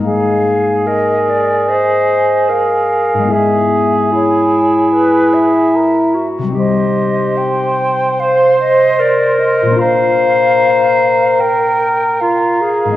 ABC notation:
X:1
M:4/4
L:1/8
Q:1/4=74
K:Ablyd
V:1 name="Flute"
f2 e d e2 f2 | =e2 _d2 =B e2 z | e2 g2 f e d e | f4 g2 f2 |]
V:2 name="Cor anglais"
A8 | ^G6 B z | c8 | B8 |]
V:3 name="Clarinet"
A2 B2 c2 B2 | ^G2 =E4- E _G | G3 z c2 B2 | c4 B2 F A |]
V:4 name="Harp"
[A,,A,B,E]8 | [^G,,^G,=B,=E]8 | [C,G,CE]8 | [B,,B,DF]8 |]